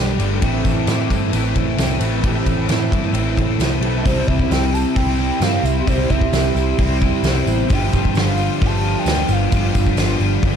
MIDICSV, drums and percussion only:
0, 0, Header, 1, 2, 480
1, 0, Start_track
1, 0, Tempo, 455235
1, 435, Time_signature, 4, 2, 24, 8
1, 11137, End_track
2, 0, Start_track
2, 0, Title_t, "Drums"
2, 206, Note_on_c, 9, 51, 81
2, 219, Note_on_c, 9, 54, 78
2, 311, Note_off_c, 9, 51, 0
2, 324, Note_off_c, 9, 54, 0
2, 443, Note_on_c, 9, 51, 111
2, 446, Note_on_c, 9, 36, 125
2, 453, Note_on_c, 9, 54, 32
2, 548, Note_off_c, 9, 51, 0
2, 551, Note_off_c, 9, 36, 0
2, 558, Note_off_c, 9, 54, 0
2, 681, Note_on_c, 9, 51, 70
2, 684, Note_on_c, 9, 36, 90
2, 697, Note_on_c, 9, 54, 75
2, 786, Note_off_c, 9, 51, 0
2, 789, Note_off_c, 9, 36, 0
2, 803, Note_off_c, 9, 54, 0
2, 919, Note_on_c, 9, 51, 91
2, 929, Note_on_c, 9, 38, 103
2, 935, Note_on_c, 9, 54, 98
2, 1024, Note_off_c, 9, 51, 0
2, 1035, Note_off_c, 9, 38, 0
2, 1040, Note_off_c, 9, 54, 0
2, 1164, Note_on_c, 9, 36, 95
2, 1166, Note_on_c, 9, 51, 76
2, 1180, Note_on_c, 9, 54, 71
2, 1270, Note_off_c, 9, 36, 0
2, 1272, Note_off_c, 9, 51, 0
2, 1286, Note_off_c, 9, 54, 0
2, 1402, Note_on_c, 9, 51, 94
2, 1414, Note_on_c, 9, 54, 85
2, 1507, Note_off_c, 9, 51, 0
2, 1520, Note_off_c, 9, 54, 0
2, 1639, Note_on_c, 9, 51, 75
2, 1643, Note_on_c, 9, 36, 85
2, 1745, Note_off_c, 9, 51, 0
2, 1749, Note_off_c, 9, 36, 0
2, 1880, Note_on_c, 9, 51, 91
2, 1890, Note_on_c, 9, 38, 111
2, 1898, Note_on_c, 9, 54, 101
2, 1985, Note_off_c, 9, 51, 0
2, 1996, Note_off_c, 9, 38, 0
2, 2003, Note_off_c, 9, 54, 0
2, 2114, Note_on_c, 9, 51, 82
2, 2127, Note_on_c, 9, 54, 80
2, 2220, Note_off_c, 9, 51, 0
2, 2232, Note_off_c, 9, 54, 0
2, 2357, Note_on_c, 9, 51, 102
2, 2357, Note_on_c, 9, 54, 29
2, 2359, Note_on_c, 9, 36, 116
2, 2462, Note_off_c, 9, 54, 0
2, 2463, Note_off_c, 9, 51, 0
2, 2465, Note_off_c, 9, 36, 0
2, 2598, Note_on_c, 9, 51, 78
2, 2599, Note_on_c, 9, 36, 89
2, 2607, Note_on_c, 9, 54, 64
2, 2703, Note_off_c, 9, 51, 0
2, 2704, Note_off_c, 9, 36, 0
2, 2712, Note_off_c, 9, 54, 0
2, 2833, Note_on_c, 9, 54, 99
2, 2837, Note_on_c, 9, 51, 84
2, 2847, Note_on_c, 9, 38, 120
2, 2939, Note_off_c, 9, 54, 0
2, 2942, Note_off_c, 9, 51, 0
2, 2953, Note_off_c, 9, 38, 0
2, 3081, Note_on_c, 9, 36, 98
2, 3090, Note_on_c, 9, 51, 78
2, 3187, Note_off_c, 9, 36, 0
2, 3195, Note_off_c, 9, 51, 0
2, 3309, Note_on_c, 9, 54, 77
2, 3317, Note_on_c, 9, 51, 85
2, 3414, Note_off_c, 9, 54, 0
2, 3422, Note_off_c, 9, 51, 0
2, 3555, Note_on_c, 9, 54, 32
2, 3558, Note_on_c, 9, 36, 88
2, 3567, Note_on_c, 9, 51, 76
2, 3660, Note_off_c, 9, 54, 0
2, 3664, Note_off_c, 9, 36, 0
2, 3672, Note_off_c, 9, 51, 0
2, 3796, Note_on_c, 9, 54, 107
2, 3804, Note_on_c, 9, 51, 93
2, 3814, Note_on_c, 9, 38, 109
2, 3901, Note_off_c, 9, 54, 0
2, 3909, Note_off_c, 9, 51, 0
2, 3920, Note_off_c, 9, 38, 0
2, 4032, Note_on_c, 9, 51, 73
2, 4137, Note_off_c, 9, 51, 0
2, 4276, Note_on_c, 9, 36, 118
2, 4279, Note_on_c, 9, 46, 66
2, 4285, Note_on_c, 9, 54, 91
2, 4382, Note_off_c, 9, 36, 0
2, 4385, Note_off_c, 9, 46, 0
2, 4391, Note_off_c, 9, 54, 0
2, 4515, Note_on_c, 9, 36, 91
2, 4620, Note_off_c, 9, 36, 0
2, 4633, Note_on_c, 9, 36, 90
2, 4738, Note_off_c, 9, 36, 0
2, 4755, Note_on_c, 9, 46, 61
2, 4761, Note_on_c, 9, 54, 101
2, 4765, Note_on_c, 9, 38, 108
2, 4860, Note_off_c, 9, 46, 0
2, 4867, Note_off_c, 9, 54, 0
2, 4871, Note_off_c, 9, 38, 0
2, 5007, Note_on_c, 9, 54, 88
2, 5112, Note_off_c, 9, 54, 0
2, 5232, Note_on_c, 9, 36, 117
2, 5237, Note_on_c, 9, 46, 67
2, 5240, Note_on_c, 9, 54, 30
2, 5338, Note_off_c, 9, 36, 0
2, 5342, Note_off_c, 9, 46, 0
2, 5346, Note_off_c, 9, 54, 0
2, 5478, Note_on_c, 9, 54, 30
2, 5583, Note_off_c, 9, 54, 0
2, 5707, Note_on_c, 9, 46, 59
2, 5711, Note_on_c, 9, 54, 113
2, 5718, Note_on_c, 9, 38, 100
2, 5813, Note_off_c, 9, 46, 0
2, 5816, Note_off_c, 9, 54, 0
2, 5823, Note_off_c, 9, 38, 0
2, 5962, Note_on_c, 9, 54, 93
2, 6067, Note_off_c, 9, 54, 0
2, 6192, Note_on_c, 9, 46, 66
2, 6194, Note_on_c, 9, 36, 115
2, 6197, Note_on_c, 9, 54, 81
2, 6297, Note_off_c, 9, 46, 0
2, 6300, Note_off_c, 9, 36, 0
2, 6302, Note_off_c, 9, 54, 0
2, 6432, Note_on_c, 9, 54, 69
2, 6434, Note_on_c, 9, 36, 88
2, 6538, Note_off_c, 9, 54, 0
2, 6539, Note_off_c, 9, 36, 0
2, 6553, Note_on_c, 9, 36, 87
2, 6658, Note_off_c, 9, 36, 0
2, 6669, Note_on_c, 9, 46, 58
2, 6678, Note_on_c, 9, 54, 102
2, 6679, Note_on_c, 9, 38, 110
2, 6774, Note_off_c, 9, 46, 0
2, 6784, Note_off_c, 9, 54, 0
2, 6785, Note_off_c, 9, 38, 0
2, 6921, Note_on_c, 9, 54, 80
2, 7027, Note_off_c, 9, 54, 0
2, 7152, Note_on_c, 9, 46, 69
2, 7157, Note_on_c, 9, 36, 112
2, 7165, Note_on_c, 9, 54, 28
2, 7258, Note_off_c, 9, 46, 0
2, 7262, Note_off_c, 9, 36, 0
2, 7271, Note_off_c, 9, 54, 0
2, 7399, Note_on_c, 9, 36, 87
2, 7402, Note_on_c, 9, 54, 32
2, 7504, Note_off_c, 9, 36, 0
2, 7507, Note_off_c, 9, 54, 0
2, 7629, Note_on_c, 9, 54, 98
2, 7633, Note_on_c, 9, 46, 64
2, 7644, Note_on_c, 9, 38, 108
2, 7734, Note_off_c, 9, 54, 0
2, 7738, Note_off_c, 9, 46, 0
2, 7749, Note_off_c, 9, 38, 0
2, 7878, Note_on_c, 9, 54, 77
2, 7983, Note_off_c, 9, 54, 0
2, 8113, Note_on_c, 9, 54, 77
2, 8116, Note_on_c, 9, 46, 68
2, 8122, Note_on_c, 9, 36, 118
2, 8218, Note_off_c, 9, 54, 0
2, 8222, Note_off_c, 9, 46, 0
2, 8227, Note_off_c, 9, 36, 0
2, 8359, Note_on_c, 9, 54, 73
2, 8366, Note_on_c, 9, 36, 90
2, 8464, Note_off_c, 9, 54, 0
2, 8471, Note_off_c, 9, 36, 0
2, 8489, Note_on_c, 9, 36, 89
2, 8593, Note_on_c, 9, 54, 89
2, 8595, Note_off_c, 9, 36, 0
2, 8607, Note_on_c, 9, 46, 70
2, 8618, Note_on_c, 9, 38, 123
2, 8699, Note_off_c, 9, 54, 0
2, 8713, Note_off_c, 9, 46, 0
2, 8723, Note_off_c, 9, 38, 0
2, 8831, Note_on_c, 9, 54, 78
2, 8936, Note_off_c, 9, 54, 0
2, 9081, Note_on_c, 9, 54, 28
2, 9086, Note_on_c, 9, 36, 113
2, 9086, Note_on_c, 9, 46, 76
2, 9186, Note_off_c, 9, 54, 0
2, 9191, Note_off_c, 9, 46, 0
2, 9192, Note_off_c, 9, 36, 0
2, 9328, Note_on_c, 9, 54, 33
2, 9434, Note_off_c, 9, 54, 0
2, 9555, Note_on_c, 9, 54, 108
2, 9563, Note_on_c, 9, 46, 64
2, 9573, Note_on_c, 9, 38, 115
2, 9660, Note_off_c, 9, 54, 0
2, 9668, Note_off_c, 9, 46, 0
2, 9679, Note_off_c, 9, 38, 0
2, 9788, Note_on_c, 9, 54, 83
2, 9894, Note_off_c, 9, 54, 0
2, 10038, Note_on_c, 9, 54, 95
2, 10042, Note_on_c, 9, 46, 72
2, 10043, Note_on_c, 9, 36, 111
2, 10143, Note_off_c, 9, 54, 0
2, 10147, Note_off_c, 9, 46, 0
2, 10148, Note_off_c, 9, 36, 0
2, 10278, Note_on_c, 9, 54, 88
2, 10283, Note_on_c, 9, 36, 98
2, 10384, Note_off_c, 9, 54, 0
2, 10388, Note_off_c, 9, 36, 0
2, 10402, Note_on_c, 9, 36, 89
2, 10508, Note_off_c, 9, 36, 0
2, 10514, Note_on_c, 9, 46, 67
2, 10515, Note_on_c, 9, 54, 94
2, 10524, Note_on_c, 9, 38, 113
2, 10619, Note_off_c, 9, 46, 0
2, 10620, Note_off_c, 9, 54, 0
2, 10630, Note_off_c, 9, 38, 0
2, 10763, Note_on_c, 9, 54, 72
2, 10868, Note_off_c, 9, 54, 0
2, 10997, Note_on_c, 9, 36, 106
2, 10998, Note_on_c, 9, 46, 54
2, 11010, Note_on_c, 9, 54, 29
2, 11102, Note_off_c, 9, 36, 0
2, 11103, Note_off_c, 9, 46, 0
2, 11115, Note_off_c, 9, 54, 0
2, 11137, End_track
0, 0, End_of_file